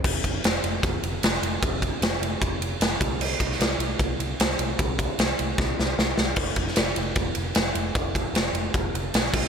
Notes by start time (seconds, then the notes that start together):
0.04 F1, kick, crash
0.24 F1, kick, ride
0.44 F1, snare, ride
0.64 F1, ride
0.83 F1, kick, ride
1.03 F1, ride
1.23 F1, snare, ride
1.34 snare
1.42 F1, ride
1.62 F1, kick, ride
1.82 kick, ride
2.02 F1, snare, ride
2.20 F1, ride
2.41 F1, kick, ride
2.60 F1, ride
2.80 F1, snare, ride
3.01 C2, kick, ride
3.19 C2, crash
3.40 C2, kick, ride
3.52 snare
3.59 C2, snare, ride
3.79 C2, ride
3.99 C2, kick, ride
4.19 C2, ride
4.40 C2, snare, ride
4.51 snare
4.59 C2, ride
4.79 C2, kick, ride
4.99 kick, ride
5.19 C2, snare, ride
5.39 C2, ride
5.58 C2, kick, snare
5.79 C2, snare
5.98 C2, snare
6.18 C2, snare
6.36 F1, kick, crash
6.56 F1, kick, ride
6.67 snare
6.76 F1, snare, ride
6.96 F1, ride
7.15 F1, kick, ride
7.35 F1, ride
7.55 F1, snare, ride
7.75 F1, ride
7.95 F1, kick, ride
8.15 kick, ride
8.34 F1, snare, ride
8.53 F1, ride
8.74 F1, kick, ride
8.94 F1, ride
9.14 B1, snare, ride
9.25 snare
9.33 C2, kick, crash